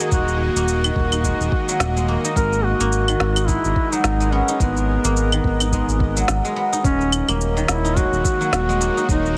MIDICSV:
0, 0, Header, 1, 7, 480
1, 0, Start_track
1, 0, Key_signature, 5, "minor"
1, 0, Tempo, 560748
1, 101, Time_signature, 4, 2, 24, 8
1, 8025, End_track
2, 0, Start_track
2, 0, Title_t, "Singing bowl"
2, 0, Program_c, 0, 14
2, 0, Note_on_c, 0, 82, 66
2, 5857, Note_on_c, 0, 73, 72
2, 5870, Note_off_c, 0, 82, 0
2, 8025, Note_off_c, 0, 73, 0
2, 8025, End_track
3, 0, Start_track
3, 0, Title_t, "Duduk"
3, 0, Program_c, 1, 69
3, 0, Note_on_c, 1, 68, 120
3, 99, Note_off_c, 1, 68, 0
3, 104, Note_on_c, 1, 66, 104
3, 326, Note_off_c, 1, 66, 0
3, 344, Note_on_c, 1, 66, 103
3, 1748, Note_off_c, 1, 66, 0
3, 2020, Note_on_c, 1, 70, 108
3, 2263, Note_on_c, 1, 66, 111
3, 2276, Note_off_c, 1, 70, 0
3, 2982, Note_on_c, 1, 64, 104
3, 2995, Note_off_c, 1, 66, 0
3, 3358, Note_on_c, 1, 63, 101
3, 3371, Note_off_c, 1, 64, 0
3, 3707, Note_on_c, 1, 61, 87
3, 3720, Note_off_c, 1, 63, 0
3, 3944, Note_off_c, 1, 61, 0
3, 3949, Note_on_c, 1, 59, 92
3, 5591, Note_off_c, 1, 59, 0
3, 5861, Note_on_c, 1, 61, 124
3, 6307, Note_off_c, 1, 61, 0
3, 6586, Note_on_c, 1, 64, 101
3, 6827, Note_on_c, 1, 66, 114
3, 6840, Note_off_c, 1, 64, 0
3, 7304, Note_off_c, 1, 66, 0
3, 7309, Note_on_c, 1, 66, 107
3, 7752, Note_off_c, 1, 66, 0
3, 7792, Note_on_c, 1, 63, 100
3, 8025, Note_off_c, 1, 63, 0
3, 8025, End_track
4, 0, Start_track
4, 0, Title_t, "Synth drone"
4, 0, Program_c, 2, 95
4, 0, Note_on_c, 2, 51, 84
4, 0, Note_on_c, 2, 58, 75
4, 0, Note_on_c, 2, 66, 85
4, 0, Note_on_c, 2, 75, 73
4, 1986, Note_off_c, 2, 58, 0
4, 1987, Note_off_c, 2, 51, 0
4, 1988, Note_off_c, 2, 66, 0
4, 2018, Note_on_c, 2, 70, 80
4, 2020, Note_on_c, 2, 56, 81
4, 5824, Note_off_c, 2, 75, 0
4, 5825, Note_off_c, 2, 70, 0
4, 5826, Note_off_c, 2, 56, 0
4, 5854, Note_on_c, 2, 66, 90
4, 5855, Note_on_c, 2, 75, 73
4, 5857, Note_on_c, 2, 58, 76
4, 5858, Note_on_c, 2, 51, 87
4, 8025, Note_off_c, 2, 51, 0
4, 8025, Note_off_c, 2, 58, 0
4, 8025, Note_off_c, 2, 66, 0
4, 8025, Note_off_c, 2, 75, 0
4, 8025, End_track
5, 0, Start_track
5, 0, Title_t, "Guzheng"
5, 0, Program_c, 3, 107
5, 0, Note_on_c, 3, 51, 74
5, 0, Note_on_c, 3, 54, 75
5, 0, Note_on_c, 3, 56, 73
5, 0, Note_on_c, 3, 58, 75
5, 5, Note_on_c, 3, 63, 68
5, 95, Note_off_c, 3, 56, 0
5, 105, Note_on_c, 3, 56, 74
5, 480, Note_off_c, 3, 58, 0
5, 483, Note_on_c, 3, 58, 94
5, 712, Note_off_c, 3, 51, 0
5, 722, Note_on_c, 3, 51, 69
5, 744, Note_off_c, 3, 54, 0
5, 744, Note_off_c, 3, 56, 0
5, 960, Note_off_c, 3, 63, 0
5, 964, Note_on_c, 3, 63, 67
5, 1066, Note_on_c, 3, 56, 78
5, 1444, Note_on_c, 3, 54, 78
5, 1673, Note_off_c, 3, 56, 0
5, 1683, Note_on_c, 3, 56, 74
5, 1780, Note_off_c, 3, 58, 0
5, 1784, Note_on_c, 3, 58, 71
5, 1918, Note_off_c, 3, 63, 0
5, 1921, Note_on_c, 3, 63, 73
5, 2011, Note_off_c, 3, 56, 0
5, 2022, Note_on_c, 3, 56, 67
5, 2064, Note_off_c, 3, 51, 0
5, 2064, Note_off_c, 3, 54, 0
5, 2397, Note_off_c, 3, 58, 0
5, 2401, Note_on_c, 3, 58, 102
5, 2641, Note_on_c, 3, 51, 73
5, 2664, Note_off_c, 3, 56, 0
5, 2877, Note_off_c, 3, 63, 0
5, 2880, Note_on_c, 3, 63, 68
5, 2980, Note_on_c, 3, 56, 77
5, 3358, Note_on_c, 3, 54, 76
5, 3588, Note_off_c, 3, 56, 0
5, 3598, Note_on_c, 3, 56, 71
5, 3701, Note_on_c, 3, 59, 79
5, 3752, Note_off_c, 3, 58, 0
5, 3837, Note_off_c, 3, 63, 0
5, 3840, Note_on_c, 3, 63, 72
5, 3930, Note_off_c, 3, 56, 0
5, 3941, Note_on_c, 3, 56, 75
5, 4320, Note_on_c, 3, 58, 100
5, 4371, Note_off_c, 3, 59, 0
5, 4550, Note_off_c, 3, 51, 0
5, 4560, Note_on_c, 3, 51, 77
5, 4584, Note_off_c, 3, 54, 0
5, 4584, Note_off_c, 3, 56, 0
5, 4798, Note_off_c, 3, 63, 0
5, 4802, Note_on_c, 3, 63, 71
5, 4903, Note_on_c, 3, 56, 79
5, 5279, Note_on_c, 3, 54, 73
5, 5508, Note_off_c, 3, 56, 0
5, 5519, Note_on_c, 3, 56, 79
5, 5618, Note_on_c, 3, 59, 78
5, 5669, Note_off_c, 3, 58, 0
5, 5754, Note_off_c, 3, 63, 0
5, 5757, Note_on_c, 3, 63, 73
5, 5849, Note_off_c, 3, 56, 0
5, 5904, Note_off_c, 3, 51, 0
5, 5904, Note_off_c, 3, 54, 0
5, 6239, Note_on_c, 3, 58, 104
5, 6290, Note_off_c, 3, 59, 0
5, 6477, Note_on_c, 3, 51, 79
5, 6712, Note_off_c, 3, 63, 0
5, 6716, Note_on_c, 3, 63, 70
5, 6817, Note_on_c, 3, 56, 78
5, 7196, Note_on_c, 3, 54, 78
5, 7427, Note_off_c, 3, 56, 0
5, 7437, Note_on_c, 3, 56, 83
5, 7535, Note_off_c, 3, 58, 0
5, 7538, Note_on_c, 3, 58, 78
5, 7677, Note_off_c, 3, 63, 0
5, 7680, Note_on_c, 3, 63, 73
5, 7771, Note_off_c, 3, 56, 0
5, 7781, Note_on_c, 3, 56, 72
5, 8025, Note_off_c, 3, 51, 0
5, 8025, Note_off_c, 3, 54, 0
5, 8025, Note_off_c, 3, 56, 0
5, 8025, Note_off_c, 3, 58, 0
5, 8025, Note_off_c, 3, 63, 0
5, 8025, End_track
6, 0, Start_track
6, 0, Title_t, "Analog synth bass"
6, 0, Program_c, 4, 38
6, 100, Note_on_c, 4, 27, 92
6, 421, Note_off_c, 4, 27, 0
6, 480, Note_on_c, 4, 27, 82
6, 778, Note_off_c, 4, 27, 0
6, 819, Note_on_c, 4, 27, 85
6, 1140, Note_off_c, 4, 27, 0
6, 1200, Note_on_c, 4, 27, 92
6, 1274, Note_off_c, 4, 27, 0
6, 1537, Note_on_c, 4, 27, 82
6, 1859, Note_off_c, 4, 27, 0
6, 2021, Note_on_c, 4, 32, 91
6, 2341, Note_off_c, 4, 32, 0
6, 2395, Note_on_c, 4, 32, 77
6, 2696, Note_off_c, 4, 32, 0
6, 2740, Note_on_c, 4, 32, 97
6, 3060, Note_off_c, 4, 32, 0
6, 3121, Note_on_c, 4, 32, 93
6, 3195, Note_off_c, 4, 32, 0
6, 3458, Note_on_c, 4, 32, 88
6, 3779, Note_off_c, 4, 32, 0
6, 3939, Note_on_c, 4, 32, 87
6, 4260, Note_off_c, 4, 32, 0
6, 4317, Note_on_c, 4, 32, 77
6, 4617, Note_off_c, 4, 32, 0
6, 4658, Note_on_c, 4, 32, 91
6, 4980, Note_off_c, 4, 32, 0
6, 5033, Note_on_c, 4, 32, 96
6, 5335, Note_off_c, 4, 32, 0
6, 5379, Note_on_c, 4, 32, 99
6, 5482, Note_off_c, 4, 32, 0
6, 5858, Note_on_c, 4, 27, 88
6, 6179, Note_off_c, 4, 27, 0
6, 6239, Note_on_c, 4, 27, 78
6, 6537, Note_off_c, 4, 27, 0
6, 6579, Note_on_c, 4, 27, 94
6, 6900, Note_off_c, 4, 27, 0
6, 6957, Note_on_c, 4, 27, 106
6, 7033, Note_off_c, 4, 27, 0
6, 7297, Note_on_c, 4, 27, 80
6, 7619, Note_off_c, 4, 27, 0
6, 7778, Note_on_c, 4, 27, 101
6, 8025, Note_off_c, 4, 27, 0
6, 8025, End_track
7, 0, Start_track
7, 0, Title_t, "Drums"
7, 99, Note_on_c, 9, 36, 105
7, 100, Note_on_c, 9, 82, 52
7, 185, Note_off_c, 9, 36, 0
7, 186, Note_off_c, 9, 82, 0
7, 240, Note_on_c, 9, 82, 28
7, 326, Note_off_c, 9, 82, 0
7, 483, Note_on_c, 9, 82, 63
7, 569, Note_off_c, 9, 82, 0
7, 582, Note_on_c, 9, 82, 46
7, 668, Note_off_c, 9, 82, 0
7, 722, Note_on_c, 9, 75, 75
7, 725, Note_on_c, 9, 82, 29
7, 807, Note_off_c, 9, 75, 0
7, 811, Note_off_c, 9, 82, 0
7, 821, Note_on_c, 9, 36, 91
7, 906, Note_off_c, 9, 36, 0
7, 959, Note_on_c, 9, 75, 68
7, 963, Note_on_c, 9, 82, 60
7, 1045, Note_off_c, 9, 75, 0
7, 1049, Note_off_c, 9, 82, 0
7, 1061, Note_on_c, 9, 36, 55
7, 1065, Note_on_c, 9, 82, 51
7, 1147, Note_off_c, 9, 36, 0
7, 1151, Note_off_c, 9, 82, 0
7, 1205, Note_on_c, 9, 82, 31
7, 1291, Note_off_c, 9, 82, 0
7, 1301, Note_on_c, 9, 36, 97
7, 1387, Note_off_c, 9, 36, 0
7, 1444, Note_on_c, 9, 82, 59
7, 1530, Note_off_c, 9, 82, 0
7, 1542, Note_on_c, 9, 38, 72
7, 1546, Note_on_c, 9, 82, 53
7, 1627, Note_off_c, 9, 38, 0
7, 1631, Note_off_c, 9, 82, 0
7, 1686, Note_on_c, 9, 82, 30
7, 1771, Note_off_c, 9, 82, 0
7, 1924, Note_on_c, 9, 82, 59
7, 2010, Note_off_c, 9, 82, 0
7, 2021, Note_on_c, 9, 36, 106
7, 2026, Note_on_c, 9, 82, 52
7, 2106, Note_off_c, 9, 36, 0
7, 2112, Note_off_c, 9, 82, 0
7, 2163, Note_on_c, 9, 82, 27
7, 2249, Note_off_c, 9, 82, 0
7, 2401, Note_on_c, 9, 82, 59
7, 2487, Note_off_c, 9, 82, 0
7, 2502, Note_on_c, 9, 82, 52
7, 2588, Note_off_c, 9, 82, 0
7, 2638, Note_on_c, 9, 75, 71
7, 2641, Note_on_c, 9, 82, 29
7, 2723, Note_off_c, 9, 75, 0
7, 2727, Note_off_c, 9, 82, 0
7, 2740, Note_on_c, 9, 38, 67
7, 2826, Note_off_c, 9, 38, 0
7, 2878, Note_on_c, 9, 75, 73
7, 2881, Note_on_c, 9, 82, 54
7, 2963, Note_off_c, 9, 75, 0
7, 2967, Note_off_c, 9, 82, 0
7, 2979, Note_on_c, 9, 36, 95
7, 2982, Note_on_c, 9, 82, 52
7, 3065, Note_off_c, 9, 36, 0
7, 3068, Note_off_c, 9, 82, 0
7, 3120, Note_on_c, 9, 82, 32
7, 3205, Note_off_c, 9, 82, 0
7, 3219, Note_on_c, 9, 36, 89
7, 3304, Note_off_c, 9, 36, 0
7, 3360, Note_on_c, 9, 82, 55
7, 3445, Note_off_c, 9, 82, 0
7, 3458, Note_on_c, 9, 38, 75
7, 3462, Note_on_c, 9, 82, 50
7, 3544, Note_off_c, 9, 38, 0
7, 3547, Note_off_c, 9, 82, 0
7, 3601, Note_on_c, 9, 82, 30
7, 3687, Note_off_c, 9, 82, 0
7, 3838, Note_on_c, 9, 82, 60
7, 3923, Note_off_c, 9, 82, 0
7, 3938, Note_on_c, 9, 36, 113
7, 3942, Note_on_c, 9, 82, 53
7, 4023, Note_off_c, 9, 36, 0
7, 4027, Note_off_c, 9, 82, 0
7, 4081, Note_on_c, 9, 82, 28
7, 4167, Note_off_c, 9, 82, 0
7, 4319, Note_on_c, 9, 82, 66
7, 4405, Note_off_c, 9, 82, 0
7, 4422, Note_on_c, 9, 82, 52
7, 4507, Note_off_c, 9, 82, 0
7, 4557, Note_on_c, 9, 75, 74
7, 4561, Note_on_c, 9, 82, 30
7, 4643, Note_off_c, 9, 75, 0
7, 4646, Note_off_c, 9, 82, 0
7, 4658, Note_on_c, 9, 36, 86
7, 4743, Note_off_c, 9, 36, 0
7, 4797, Note_on_c, 9, 75, 72
7, 4800, Note_on_c, 9, 82, 62
7, 4882, Note_off_c, 9, 75, 0
7, 4886, Note_off_c, 9, 82, 0
7, 4898, Note_on_c, 9, 36, 55
7, 4903, Note_on_c, 9, 82, 52
7, 4983, Note_off_c, 9, 36, 0
7, 4989, Note_off_c, 9, 82, 0
7, 5041, Note_on_c, 9, 82, 31
7, 5126, Note_off_c, 9, 82, 0
7, 5138, Note_on_c, 9, 36, 100
7, 5224, Note_off_c, 9, 36, 0
7, 5280, Note_on_c, 9, 82, 61
7, 5366, Note_off_c, 9, 82, 0
7, 5376, Note_on_c, 9, 38, 76
7, 5380, Note_on_c, 9, 82, 51
7, 5462, Note_off_c, 9, 38, 0
7, 5466, Note_off_c, 9, 82, 0
7, 5521, Note_on_c, 9, 82, 28
7, 5606, Note_off_c, 9, 82, 0
7, 5761, Note_on_c, 9, 82, 57
7, 5847, Note_off_c, 9, 82, 0
7, 5859, Note_on_c, 9, 36, 119
7, 5862, Note_on_c, 9, 82, 47
7, 5944, Note_off_c, 9, 36, 0
7, 5948, Note_off_c, 9, 82, 0
7, 6000, Note_on_c, 9, 82, 21
7, 6085, Note_off_c, 9, 82, 0
7, 6098, Note_on_c, 9, 75, 72
7, 6102, Note_on_c, 9, 82, 73
7, 6184, Note_off_c, 9, 75, 0
7, 6188, Note_off_c, 9, 82, 0
7, 6236, Note_on_c, 9, 75, 81
7, 6240, Note_on_c, 9, 82, 33
7, 6322, Note_off_c, 9, 75, 0
7, 6326, Note_off_c, 9, 82, 0
7, 6343, Note_on_c, 9, 82, 43
7, 6429, Note_off_c, 9, 82, 0
7, 6481, Note_on_c, 9, 82, 21
7, 6567, Note_off_c, 9, 82, 0
7, 6578, Note_on_c, 9, 38, 80
7, 6581, Note_on_c, 9, 82, 76
7, 6663, Note_off_c, 9, 38, 0
7, 6667, Note_off_c, 9, 82, 0
7, 6722, Note_on_c, 9, 82, 31
7, 6808, Note_off_c, 9, 82, 0
7, 6819, Note_on_c, 9, 36, 107
7, 6822, Note_on_c, 9, 82, 46
7, 6905, Note_off_c, 9, 36, 0
7, 6907, Note_off_c, 9, 82, 0
7, 6961, Note_on_c, 9, 82, 22
7, 7047, Note_off_c, 9, 82, 0
7, 7059, Note_on_c, 9, 36, 101
7, 7063, Note_on_c, 9, 82, 71
7, 7145, Note_off_c, 9, 36, 0
7, 7148, Note_off_c, 9, 82, 0
7, 7204, Note_on_c, 9, 82, 31
7, 7289, Note_off_c, 9, 82, 0
7, 7300, Note_on_c, 9, 38, 80
7, 7304, Note_on_c, 9, 82, 44
7, 7386, Note_off_c, 9, 38, 0
7, 7390, Note_off_c, 9, 82, 0
7, 7445, Note_on_c, 9, 82, 21
7, 7530, Note_off_c, 9, 82, 0
7, 7544, Note_on_c, 9, 82, 73
7, 7630, Note_off_c, 9, 82, 0
7, 7682, Note_on_c, 9, 82, 32
7, 7768, Note_off_c, 9, 82, 0
7, 7779, Note_on_c, 9, 36, 127
7, 7784, Note_on_c, 9, 82, 45
7, 7864, Note_off_c, 9, 36, 0
7, 7869, Note_off_c, 9, 82, 0
7, 7924, Note_on_c, 9, 82, 21
7, 8009, Note_off_c, 9, 82, 0
7, 8025, End_track
0, 0, End_of_file